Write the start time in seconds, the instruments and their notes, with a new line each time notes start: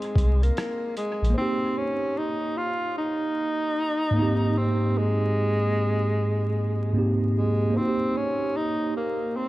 Already playing: tenor saxophone G#3, tine electric piano C4 D#4 G#4 C5
0.02 closed hi-hat
0.15 sub bass C2, kick, closed hi-hat
0.42 tenor saxophone A#3, closed hi-hat
0.57 cross-stick, closed hi-hat
0.97 tenor saxophone G#3, closed hi-hat
1.22 sub bass A#1, closed hi-hat
1.30 tine electric piano A#3 C5
1.37 tenor saxophone C4, tine electric piano D#4
1.42 tine electric piano G4
1.77 tenor saxophone C#4
2.17 tenor saxophone D#4
2.57 tenor saxophone F4
2.98 tenor saxophone D#4
4.10 tine electric piano G#2 A#3
4.16 tine electric piano B3 D#4
4.22 tine electric piano C4 G4
4.58 tenor saxophone C4
4.98 tenor saxophone G#3
6.93 tine electric piano G#2 A#3 C4
6.97 tine electric piano D#4 G4
7.37 tenor saxophone G#3
7.70 tine electric piano A#3 C5
7.77 tenor saxophone C4, tine electric piano D#4
7.81 tine electric piano F#4
7.88 tine electric piano G4
8.17 tenor saxophone C#4
8.57 tenor saxophone D#4
8.96 tenor saxophone A#3
9.36 tenor saxophone C4